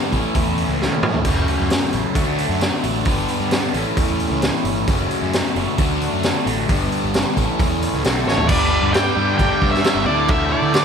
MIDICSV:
0, 0, Header, 1, 8, 480
1, 0, Start_track
1, 0, Tempo, 452148
1, 1326, Time_signature, 4, 2, 24, 8
1, 11517, End_track
2, 0, Start_track
2, 0, Title_t, "Lead electric guitar"
2, 0, Program_c, 0, 29
2, 8793, Note_on_c, 0, 73, 80
2, 8996, Note_on_c, 0, 74, 85
2, 9030, Note_off_c, 0, 73, 0
2, 9449, Note_off_c, 0, 74, 0
2, 9483, Note_on_c, 0, 79, 109
2, 9942, Note_off_c, 0, 79, 0
2, 9955, Note_on_c, 0, 79, 101
2, 10308, Note_off_c, 0, 79, 0
2, 10313, Note_on_c, 0, 76, 90
2, 10653, Note_off_c, 0, 76, 0
2, 10682, Note_on_c, 0, 74, 89
2, 10930, Note_off_c, 0, 74, 0
2, 10934, Note_on_c, 0, 76, 87
2, 11152, Note_off_c, 0, 76, 0
2, 11167, Note_on_c, 0, 74, 85
2, 11517, Note_off_c, 0, 74, 0
2, 11517, End_track
3, 0, Start_track
3, 0, Title_t, "Lead electric guitar"
3, 0, Program_c, 1, 29
3, 8755, Note_on_c, 1, 69, 65
3, 8985, Note_on_c, 1, 71, 81
3, 8986, Note_off_c, 1, 69, 0
3, 9443, Note_off_c, 1, 71, 0
3, 9468, Note_on_c, 1, 74, 79
3, 9923, Note_off_c, 1, 74, 0
3, 9960, Note_on_c, 1, 74, 85
3, 10298, Note_off_c, 1, 74, 0
3, 10321, Note_on_c, 1, 73, 88
3, 10657, Note_off_c, 1, 73, 0
3, 10698, Note_on_c, 1, 69, 73
3, 10909, Note_off_c, 1, 69, 0
3, 10922, Note_on_c, 1, 69, 83
3, 11145, Note_off_c, 1, 69, 0
3, 11160, Note_on_c, 1, 69, 66
3, 11517, Note_off_c, 1, 69, 0
3, 11517, End_track
4, 0, Start_track
4, 0, Title_t, "Overdriven electric guitar"
4, 0, Program_c, 2, 29
4, 0, Note_on_c, 2, 67, 98
4, 120, Note_off_c, 2, 67, 0
4, 147, Note_on_c, 2, 69, 92
4, 1322, Note_off_c, 2, 69, 0
4, 1348, Note_on_c, 2, 66, 84
4, 2283, Note_off_c, 2, 66, 0
4, 2304, Note_on_c, 2, 66, 96
4, 3243, Note_off_c, 2, 66, 0
4, 3270, Note_on_c, 2, 67, 91
4, 3966, Note_off_c, 2, 67, 0
4, 3994, Note_on_c, 2, 69, 87
4, 5170, Note_off_c, 2, 69, 0
4, 5205, Note_on_c, 2, 66, 99
4, 6136, Note_off_c, 2, 66, 0
4, 6168, Note_on_c, 2, 66, 97
4, 7098, Note_off_c, 2, 66, 0
4, 7116, Note_on_c, 2, 67, 96
4, 7811, Note_off_c, 2, 67, 0
4, 7829, Note_on_c, 2, 69, 93
4, 8527, Note_off_c, 2, 69, 0
4, 9039, Note_on_c, 2, 67, 93
4, 9232, Note_off_c, 2, 67, 0
4, 9245, Note_on_c, 2, 67, 74
4, 9254, Note_on_c, 2, 62, 71
4, 9258, Note_on_c, 2, 59, 65
4, 9266, Note_on_c, 2, 55, 61
4, 9471, Note_off_c, 2, 55, 0
4, 9478, Note_off_c, 2, 59, 0
4, 9493, Note_off_c, 2, 62, 0
4, 9493, Note_off_c, 2, 67, 0
4, 9506, Note_on_c, 2, 67, 75
4, 9702, Note_off_c, 2, 67, 0
4, 9715, Note_on_c, 2, 67, 82
4, 10440, Note_on_c, 2, 43, 88
4, 10450, Note_off_c, 2, 67, 0
4, 10463, Note_on_c, 2, 67, 99
4, 10668, Note_off_c, 2, 43, 0
4, 10679, Note_off_c, 2, 67, 0
4, 10700, Note_on_c, 2, 69, 78
4, 10939, Note_off_c, 2, 69, 0
4, 10952, Note_on_c, 2, 69, 106
4, 11156, Note_off_c, 2, 69, 0
4, 11169, Note_on_c, 2, 69, 73
4, 11184, Note_on_c, 2, 64, 65
4, 11192, Note_on_c, 2, 57, 55
4, 11387, Note_off_c, 2, 57, 0
4, 11398, Note_off_c, 2, 69, 0
4, 11400, Note_off_c, 2, 64, 0
4, 11411, Note_on_c, 2, 69, 79
4, 11517, Note_off_c, 2, 69, 0
4, 11517, End_track
5, 0, Start_track
5, 0, Title_t, "Overdriven electric guitar"
5, 0, Program_c, 3, 29
5, 0, Note_on_c, 3, 43, 79
5, 0, Note_on_c, 3, 50, 78
5, 0, Note_on_c, 3, 55, 80
5, 0, Note_on_c, 3, 59, 77
5, 0, Note_on_c, 3, 62, 87
5, 114, Note_off_c, 3, 43, 0
5, 120, Note_off_c, 3, 50, 0
5, 120, Note_on_c, 3, 45, 90
5, 126, Note_off_c, 3, 55, 0
5, 126, Note_on_c, 3, 52, 85
5, 130, Note_off_c, 3, 59, 0
5, 133, Note_off_c, 3, 62, 0
5, 144, Note_on_c, 3, 57, 86
5, 145, Note_on_c, 3, 61, 87
5, 152, Note_on_c, 3, 64, 90
5, 824, Note_off_c, 3, 45, 0
5, 829, Note_off_c, 3, 52, 0
5, 837, Note_on_c, 3, 45, 72
5, 840, Note_off_c, 3, 57, 0
5, 841, Note_off_c, 3, 61, 0
5, 841, Note_on_c, 3, 52, 67
5, 845, Note_off_c, 3, 64, 0
5, 854, Note_on_c, 3, 57, 77
5, 863, Note_on_c, 3, 61, 81
5, 869, Note_on_c, 3, 64, 87
5, 1307, Note_off_c, 3, 45, 0
5, 1309, Note_off_c, 3, 52, 0
5, 1316, Note_off_c, 3, 57, 0
5, 1320, Note_off_c, 3, 61, 0
5, 1323, Note_off_c, 3, 64, 0
5, 1328, Note_on_c, 3, 42, 75
5, 1336, Note_on_c, 3, 49, 83
5, 1349, Note_on_c, 3, 54, 85
5, 1353, Note_on_c, 3, 57, 81
5, 1356, Note_on_c, 3, 61, 95
5, 2026, Note_off_c, 3, 61, 0
5, 2033, Note_off_c, 3, 42, 0
5, 2033, Note_off_c, 3, 57, 0
5, 2037, Note_off_c, 3, 49, 0
5, 2039, Note_on_c, 3, 61, 78
5, 2044, Note_off_c, 3, 54, 0
5, 2046, Note_on_c, 3, 57, 69
5, 2055, Note_on_c, 3, 54, 70
5, 2059, Note_on_c, 3, 49, 67
5, 2067, Note_on_c, 3, 42, 66
5, 2268, Note_off_c, 3, 49, 0
5, 2269, Note_off_c, 3, 54, 0
5, 2269, Note_off_c, 3, 61, 0
5, 2272, Note_off_c, 3, 57, 0
5, 2272, Note_on_c, 3, 50, 77
5, 2282, Note_on_c, 3, 54, 93
5, 2283, Note_off_c, 3, 42, 0
5, 2293, Note_on_c, 3, 57, 94
5, 2301, Note_on_c, 3, 62, 96
5, 2985, Note_off_c, 3, 62, 0
5, 2986, Note_off_c, 3, 50, 0
5, 2991, Note_off_c, 3, 54, 0
5, 2997, Note_off_c, 3, 57, 0
5, 2998, Note_on_c, 3, 62, 76
5, 3008, Note_on_c, 3, 57, 73
5, 3020, Note_on_c, 3, 54, 72
5, 3030, Note_on_c, 3, 50, 63
5, 3229, Note_off_c, 3, 62, 0
5, 3234, Note_off_c, 3, 57, 0
5, 3237, Note_off_c, 3, 50, 0
5, 3240, Note_off_c, 3, 54, 0
5, 3242, Note_on_c, 3, 43, 77
5, 3250, Note_on_c, 3, 50, 79
5, 3259, Note_on_c, 3, 55, 81
5, 3268, Note_on_c, 3, 59, 89
5, 3273, Note_on_c, 3, 62, 88
5, 3952, Note_off_c, 3, 43, 0
5, 3956, Note_off_c, 3, 50, 0
5, 3961, Note_off_c, 3, 55, 0
5, 3965, Note_off_c, 3, 59, 0
5, 3967, Note_off_c, 3, 62, 0
5, 3976, Note_on_c, 3, 45, 85
5, 3982, Note_on_c, 3, 52, 92
5, 3985, Note_on_c, 3, 57, 92
5, 3997, Note_on_c, 3, 61, 92
5, 4007, Note_on_c, 3, 64, 93
5, 4667, Note_off_c, 3, 45, 0
5, 4676, Note_off_c, 3, 52, 0
5, 4680, Note_on_c, 3, 45, 69
5, 4684, Note_off_c, 3, 57, 0
5, 4689, Note_on_c, 3, 52, 67
5, 4690, Note_off_c, 3, 61, 0
5, 4695, Note_off_c, 3, 64, 0
5, 4701, Note_on_c, 3, 57, 76
5, 4707, Note_on_c, 3, 61, 73
5, 4716, Note_on_c, 3, 64, 80
5, 5152, Note_off_c, 3, 45, 0
5, 5156, Note_off_c, 3, 52, 0
5, 5162, Note_off_c, 3, 57, 0
5, 5165, Note_off_c, 3, 61, 0
5, 5170, Note_off_c, 3, 64, 0
5, 5171, Note_on_c, 3, 42, 90
5, 5181, Note_on_c, 3, 49, 86
5, 5191, Note_on_c, 3, 54, 87
5, 5196, Note_on_c, 3, 57, 82
5, 5203, Note_on_c, 3, 61, 99
5, 5868, Note_off_c, 3, 61, 0
5, 5878, Note_off_c, 3, 42, 0
5, 5881, Note_on_c, 3, 61, 79
5, 5883, Note_off_c, 3, 49, 0
5, 5884, Note_off_c, 3, 57, 0
5, 5888, Note_off_c, 3, 54, 0
5, 5897, Note_on_c, 3, 57, 73
5, 5902, Note_on_c, 3, 54, 83
5, 5911, Note_on_c, 3, 49, 73
5, 5917, Note_on_c, 3, 42, 66
5, 6113, Note_off_c, 3, 61, 0
5, 6121, Note_off_c, 3, 57, 0
5, 6124, Note_off_c, 3, 54, 0
5, 6125, Note_off_c, 3, 49, 0
5, 6129, Note_on_c, 3, 50, 77
5, 6131, Note_off_c, 3, 42, 0
5, 6139, Note_on_c, 3, 54, 91
5, 6151, Note_on_c, 3, 57, 86
5, 6162, Note_on_c, 3, 62, 93
5, 6837, Note_off_c, 3, 62, 0
5, 6838, Note_off_c, 3, 50, 0
5, 6843, Note_off_c, 3, 54, 0
5, 6849, Note_off_c, 3, 57, 0
5, 6849, Note_on_c, 3, 62, 79
5, 6860, Note_on_c, 3, 57, 70
5, 6868, Note_on_c, 3, 54, 64
5, 6882, Note_on_c, 3, 50, 65
5, 7078, Note_off_c, 3, 62, 0
5, 7080, Note_off_c, 3, 50, 0
5, 7082, Note_on_c, 3, 43, 88
5, 7083, Note_off_c, 3, 57, 0
5, 7087, Note_off_c, 3, 54, 0
5, 7093, Note_on_c, 3, 50, 89
5, 7103, Note_on_c, 3, 55, 86
5, 7113, Note_on_c, 3, 59, 88
5, 7117, Note_on_c, 3, 62, 97
5, 7794, Note_off_c, 3, 43, 0
5, 7799, Note_off_c, 3, 50, 0
5, 7805, Note_off_c, 3, 55, 0
5, 7808, Note_on_c, 3, 45, 88
5, 7810, Note_off_c, 3, 59, 0
5, 7812, Note_off_c, 3, 62, 0
5, 7819, Note_on_c, 3, 52, 87
5, 7824, Note_on_c, 3, 57, 83
5, 7836, Note_on_c, 3, 61, 96
5, 7844, Note_on_c, 3, 64, 95
5, 8516, Note_off_c, 3, 45, 0
5, 8522, Note_off_c, 3, 52, 0
5, 8524, Note_off_c, 3, 57, 0
5, 8526, Note_on_c, 3, 50, 90
5, 8530, Note_off_c, 3, 61, 0
5, 8534, Note_off_c, 3, 64, 0
5, 8541, Note_on_c, 3, 57, 83
5, 8551, Note_on_c, 3, 62, 89
5, 8558, Note_on_c, 3, 66, 82
5, 8995, Note_off_c, 3, 50, 0
5, 9002, Note_off_c, 3, 57, 0
5, 9007, Note_off_c, 3, 62, 0
5, 9008, Note_on_c, 3, 43, 84
5, 9011, Note_off_c, 3, 66, 0
5, 9020, Note_on_c, 3, 50, 87
5, 9025, Note_on_c, 3, 55, 100
5, 9033, Note_on_c, 3, 59, 100
5, 9040, Note_on_c, 3, 62, 102
5, 9457, Note_off_c, 3, 50, 0
5, 9469, Note_off_c, 3, 55, 0
5, 9470, Note_on_c, 3, 50, 84
5, 9475, Note_off_c, 3, 59, 0
5, 9482, Note_on_c, 3, 55, 78
5, 9488, Note_on_c, 3, 59, 79
5, 9497, Note_off_c, 3, 62, 0
5, 9501, Note_on_c, 3, 62, 81
5, 9714, Note_off_c, 3, 62, 0
5, 9718, Note_on_c, 3, 62, 65
5, 9721, Note_off_c, 3, 59, 0
5, 9728, Note_off_c, 3, 43, 0
5, 9732, Note_off_c, 3, 55, 0
5, 9734, Note_on_c, 3, 59, 68
5, 9745, Note_on_c, 3, 55, 60
5, 9951, Note_off_c, 3, 50, 0
5, 9954, Note_off_c, 3, 55, 0
5, 9957, Note_on_c, 3, 43, 95
5, 9961, Note_off_c, 3, 59, 0
5, 9963, Note_on_c, 3, 50, 99
5, 9967, Note_on_c, 3, 55, 98
5, 9973, Note_off_c, 3, 62, 0
5, 9974, Note_on_c, 3, 59, 107
5, 9986, Note_on_c, 3, 62, 106
5, 10181, Note_off_c, 3, 62, 0
5, 10194, Note_on_c, 3, 62, 72
5, 10202, Note_off_c, 3, 59, 0
5, 10213, Note_off_c, 3, 55, 0
5, 10215, Note_on_c, 3, 59, 63
5, 10226, Note_on_c, 3, 55, 51
5, 10436, Note_off_c, 3, 50, 0
5, 10441, Note_off_c, 3, 43, 0
5, 10443, Note_off_c, 3, 55, 0
5, 10448, Note_on_c, 3, 50, 76
5, 10452, Note_off_c, 3, 59, 0
5, 10456, Note_on_c, 3, 55, 87
5, 10462, Note_off_c, 3, 62, 0
5, 10465, Note_on_c, 3, 59, 78
5, 10475, Note_on_c, 3, 62, 85
5, 10672, Note_off_c, 3, 50, 0
5, 10676, Note_off_c, 3, 55, 0
5, 10680, Note_off_c, 3, 59, 0
5, 10681, Note_off_c, 3, 62, 0
5, 10685, Note_on_c, 3, 64, 88
5, 10703, Note_on_c, 3, 57, 88
5, 10708, Note_on_c, 3, 52, 79
5, 10716, Note_on_c, 3, 50, 74
5, 10908, Note_off_c, 3, 50, 0
5, 10920, Note_on_c, 3, 50, 87
5, 10929, Note_off_c, 3, 52, 0
5, 10933, Note_on_c, 3, 52, 97
5, 10934, Note_off_c, 3, 57, 0
5, 10947, Note_on_c, 3, 57, 91
5, 10952, Note_off_c, 3, 64, 0
5, 10958, Note_on_c, 3, 64, 98
5, 11383, Note_off_c, 3, 50, 0
5, 11396, Note_on_c, 3, 50, 76
5, 11404, Note_off_c, 3, 52, 0
5, 11405, Note_off_c, 3, 57, 0
5, 11408, Note_on_c, 3, 52, 78
5, 11418, Note_on_c, 3, 57, 86
5, 11422, Note_off_c, 3, 64, 0
5, 11427, Note_on_c, 3, 64, 90
5, 11517, Note_off_c, 3, 50, 0
5, 11517, Note_off_c, 3, 52, 0
5, 11517, Note_off_c, 3, 57, 0
5, 11517, Note_off_c, 3, 64, 0
5, 11517, End_track
6, 0, Start_track
6, 0, Title_t, "Overdriven electric guitar"
6, 0, Program_c, 4, 29
6, 9739, Note_on_c, 4, 50, 88
6, 9752, Note_on_c, 4, 43, 71
6, 10429, Note_off_c, 4, 43, 0
6, 10437, Note_off_c, 4, 50, 0
6, 10441, Note_on_c, 4, 43, 69
6, 10669, Note_off_c, 4, 43, 0
6, 10701, Note_on_c, 4, 62, 92
6, 11395, Note_off_c, 4, 62, 0
6, 11423, Note_on_c, 4, 62, 86
6, 11517, Note_off_c, 4, 62, 0
6, 11517, End_track
7, 0, Start_track
7, 0, Title_t, "Picked electric bass"
7, 0, Program_c, 5, 34
7, 134, Note_on_c, 5, 33, 76
7, 231, Note_off_c, 5, 33, 0
7, 372, Note_on_c, 5, 40, 85
7, 670, Note_off_c, 5, 40, 0
7, 723, Note_on_c, 5, 37, 70
7, 925, Note_off_c, 5, 37, 0
7, 1089, Note_on_c, 5, 45, 88
7, 1288, Note_off_c, 5, 45, 0
7, 1327, Note_on_c, 5, 30, 88
7, 1527, Note_off_c, 5, 30, 0
7, 1695, Note_on_c, 5, 42, 77
7, 1892, Note_off_c, 5, 42, 0
7, 2050, Note_on_c, 5, 33, 73
7, 2149, Note_off_c, 5, 33, 0
7, 2287, Note_on_c, 5, 38, 91
7, 2588, Note_off_c, 5, 38, 0
7, 2644, Note_on_c, 5, 42, 81
7, 2846, Note_off_c, 5, 42, 0
7, 3012, Note_on_c, 5, 33, 86
7, 3211, Note_off_c, 5, 33, 0
7, 3247, Note_on_c, 5, 31, 93
7, 3448, Note_off_c, 5, 31, 0
7, 3610, Note_on_c, 5, 43, 72
7, 3811, Note_off_c, 5, 43, 0
7, 3969, Note_on_c, 5, 33, 76
7, 4070, Note_off_c, 5, 33, 0
7, 4216, Note_on_c, 5, 40, 92
7, 4515, Note_off_c, 5, 40, 0
7, 4568, Note_on_c, 5, 37, 73
7, 4770, Note_off_c, 5, 37, 0
7, 4927, Note_on_c, 5, 31, 82
7, 5130, Note_off_c, 5, 31, 0
7, 5180, Note_on_c, 5, 30, 89
7, 5377, Note_off_c, 5, 30, 0
7, 5541, Note_on_c, 5, 42, 72
7, 5738, Note_off_c, 5, 42, 0
7, 5901, Note_on_c, 5, 30, 83
7, 5998, Note_off_c, 5, 30, 0
7, 6138, Note_on_c, 5, 38, 88
7, 6438, Note_off_c, 5, 38, 0
7, 6505, Note_on_c, 5, 42, 72
7, 6701, Note_off_c, 5, 42, 0
7, 6861, Note_on_c, 5, 33, 93
7, 7059, Note_off_c, 5, 33, 0
7, 7108, Note_on_c, 5, 31, 89
7, 7303, Note_off_c, 5, 31, 0
7, 7467, Note_on_c, 5, 31, 74
7, 7662, Note_off_c, 5, 31, 0
7, 7826, Note_on_c, 5, 33, 83
7, 7921, Note_off_c, 5, 33, 0
7, 8059, Note_on_c, 5, 40, 95
7, 8358, Note_off_c, 5, 40, 0
7, 8424, Note_on_c, 5, 37, 71
7, 8520, Note_off_c, 5, 37, 0
7, 8545, Note_on_c, 5, 35, 80
7, 8756, Note_off_c, 5, 35, 0
7, 8779, Note_on_c, 5, 33, 78
7, 8992, Note_off_c, 5, 33, 0
7, 9011, Note_on_c, 5, 31, 100
7, 9312, Note_off_c, 5, 31, 0
7, 9363, Note_on_c, 5, 43, 85
7, 9667, Note_off_c, 5, 43, 0
7, 9729, Note_on_c, 5, 43, 98
7, 9930, Note_off_c, 5, 43, 0
7, 9974, Note_on_c, 5, 31, 87
7, 10072, Note_off_c, 5, 31, 0
7, 10210, Note_on_c, 5, 43, 84
7, 10409, Note_off_c, 5, 43, 0
7, 10561, Note_on_c, 5, 31, 81
7, 10663, Note_off_c, 5, 31, 0
7, 10672, Note_on_c, 5, 38, 93
7, 11176, Note_off_c, 5, 38, 0
7, 11276, Note_on_c, 5, 50, 90
7, 11517, Note_off_c, 5, 50, 0
7, 11517, End_track
8, 0, Start_track
8, 0, Title_t, "Drums"
8, 132, Note_on_c, 9, 36, 66
8, 134, Note_on_c, 9, 46, 47
8, 238, Note_off_c, 9, 36, 0
8, 241, Note_off_c, 9, 46, 0
8, 370, Note_on_c, 9, 46, 65
8, 371, Note_on_c, 9, 36, 110
8, 476, Note_off_c, 9, 46, 0
8, 477, Note_off_c, 9, 36, 0
8, 611, Note_on_c, 9, 46, 43
8, 717, Note_off_c, 9, 46, 0
8, 869, Note_on_c, 9, 38, 47
8, 975, Note_off_c, 9, 38, 0
8, 975, Note_on_c, 9, 48, 58
8, 1081, Note_off_c, 9, 48, 0
8, 1093, Note_on_c, 9, 45, 85
8, 1199, Note_off_c, 9, 45, 0
8, 1208, Note_on_c, 9, 43, 84
8, 1314, Note_off_c, 9, 43, 0
8, 1323, Note_on_c, 9, 46, 64
8, 1323, Note_on_c, 9, 49, 74
8, 1327, Note_on_c, 9, 36, 97
8, 1430, Note_off_c, 9, 46, 0
8, 1430, Note_off_c, 9, 49, 0
8, 1433, Note_off_c, 9, 36, 0
8, 1569, Note_on_c, 9, 46, 44
8, 1675, Note_off_c, 9, 46, 0
8, 1806, Note_on_c, 9, 46, 60
8, 1817, Note_on_c, 9, 38, 92
8, 1912, Note_off_c, 9, 46, 0
8, 1924, Note_off_c, 9, 38, 0
8, 2046, Note_on_c, 9, 46, 47
8, 2152, Note_off_c, 9, 46, 0
8, 2284, Note_on_c, 9, 46, 61
8, 2286, Note_on_c, 9, 36, 105
8, 2390, Note_off_c, 9, 46, 0
8, 2392, Note_off_c, 9, 36, 0
8, 2531, Note_on_c, 9, 46, 49
8, 2637, Note_off_c, 9, 46, 0
8, 2771, Note_on_c, 9, 46, 61
8, 2783, Note_on_c, 9, 38, 96
8, 2877, Note_off_c, 9, 46, 0
8, 2889, Note_off_c, 9, 38, 0
8, 3010, Note_on_c, 9, 46, 53
8, 3117, Note_off_c, 9, 46, 0
8, 3241, Note_on_c, 9, 46, 71
8, 3247, Note_on_c, 9, 36, 98
8, 3347, Note_off_c, 9, 46, 0
8, 3353, Note_off_c, 9, 36, 0
8, 3486, Note_on_c, 9, 46, 50
8, 3592, Note_off_c, 9, 46, 0
8, 3726, Note_on_c, 9, 46, 62
8, 3738, Note_on_c, 9, 38, 94
8, 3832, Note_off_c, 9, 46, 0
8, 3844, Note_off_c, 9, 38, 0
8, 3971, Note_on_c, 9, 46, 48
8, 4077, Note_off_c, 9, 46, 0
8, 4214, Note_on_c, 9, 46, 68
8, 4215, Note_on_c, 9, 36, 101
8, 4320, Note_off_c, 9, 46, 0
8, 4321, Note_off_c, 9, 36, 0
8, 4455, Note_on_c, 9, 46, 46
8, 4561, Note_off_c, 9, 46, 0
8, 4692, Note_on_c, 9, 46, 62
8, 4703, Note_on_c, 9, 38, 92
8, 4798, Note_off_c, 9, 46, 0
8, 4809, Note_off_c, 9, 38, 0
8, 4936, Note_on_c, 9, 46, 51
8, 5042, Note_off_c, 9, 46, 0
8, 5176, Note_on_c, 9, 46, 62
8, 5178, Note_on_c, 9, 36, 97
8, 5282, Note_off_c, 9, 46, 0
8, 5284, Note_off_c, 9, 36, 0
8, 5422, Note_on_c, 9, 46, 45
8, 5528, Note_off_c, 9, 46, 0
8, 5660, Note_on_c, 9, 46, 62
8, 5672, Note_on_c, 9, 38, 94
8, 5767, Note_off_c, 9, 46, 0
8, 5778, Note_off_c, 9, 38, 0
8, 5903, Note_on_c, 9, 46, 44
8, 6009, Note_off_c, 9, 46, 0
8, 6137, Note_on_c, 9, 46, 63
8, 6141, Note_on_c, 9, 36, 101
8, 6243, Note_off_c, 9, 46, 0
8, 6247, Note_off_c, 9, 36, 0
8, 6384, Note_on_c, 9, 46, 47
8, 6491, Note_off_c, 9, 46, 0
8, 6616, Note_on_c, 9, 46, 55
8, 6628, Note_on_c, 9, 38, 101
8, 6722, Note_off_c, 9, 46, 0
8, 6734, Note_off_c, 9, 38, 0
8, 6869, Note_on_c, 9, 46, 53
8, 6975, Note_off_c, 9, 46, 0
8, 7104, Note_on_c, 9, 46, 71
8, 7105, Note_on_c, 9, 36, 106
8, 7210, Note_off_c, 9, 46, 0
8, 7211, Note_off_c, 9, 36, 0
8, 7346, Note_on_c, 9, 46, 49
8, 7452, Note_off_c, 9, 46, 0
8, 7580, Note_on_c, 9, 46, 62
8, 7592, Note_on_c, 9, 38, 96
8, 7686, Note_off_c, 9, 46, 0
8, 7698, Note_off_c, 9, 38, 0
8, 7823, Note_on_c, 9, 36, 72
8, 7825, Note_on_c, 9, 46, 50
8, 7929, Note_off_c, 9, 36, 0
8, 7932, Note_off_c, 9, 46, 0
8, 8063, Note_on_c, 9, 36, 111
8, 8066, Note_on_c, 9, 46, 71
8, 8169, Note_off_c, 9, 36, 0
8, 8172, Note_off_c, 9, 46, 0
8, 8306, Note_on_c, 9, 46, 49
8, 8412, Note_off_c, 9, 46, 0
8, 8540, Note_on_c, 9, 46, 63
8, 8551, Note_on_c, 9, 38, 91
8, 8646, Note_off_c, 9, 46, 0
8, 8658, Note_off_c, 9, 38, 0
8, 8793, Note_on_c, 9, 38, 60
8, 8892, Note_on_c, 9, 43, 78
8, 8899, Note_off_c, 9, 38, 0
8, 8999, Note_off_c, 9, 43, 0
8, 9011, Note_on_c, 9, 49, 56
8, 9011, Note_on_c, 9, 57, 125
8, 9015, Note_on_c, 9, 36, 110
8, 9117, Note_off_c, 9, 49, 0
8, 9117, Note_off_c, 9, 57, 0
8, 9121, Note_off_c, 9, 36, 0
8, 9493, Note_on_c, 9, 49, 53
8, 9504, Note_on_c, 9, 38, 110
8, 9599, Note_off_c, 9, 49, 0
8, 9611, Note_off_c, 9, 38, 0
8, 9970, Note_on_c, 9, 49, 60
8, 9971, Note_on_c, 9, 36, 91
8, 10076, Note_off_c, 9, 49, 0
8, 10077, Note_off_c, 9, 36, 0
8, 10211, Note_on_c, 9, 36, 78
8, 10317, Note_off_c, 9, 36, 0
8, 10343, Note_on_c, 9, 38, 34
8, 10449, Note_off_c, 9, 38, 0
8, 10450, Note_on_c, 9, 49, 61
8, 10461, Note_on_c, 9, 38, 101
8, 10556, Note_off_c, 9, 49, 0
8, 10568, Note_off_c, 9, 38, 0
8, 10918, Note_on_c, 9, 49, 59
8, 10926, Note_on_c, 9, 36, 117
8, 11024, Note_off_c, 9, 49, 0
8, 11032, Note_off_c, 9, 36, 0
8, 11400, Note_on_c, 9, 49, 57
8, 11411, Note_on_c, 9, 38, 107
8, 11506, Note_off_c, 9, 49, 0
8, 11517, Note_off_c, 9, 38, 0
8, 11517, End_track
0, 0, End_of_file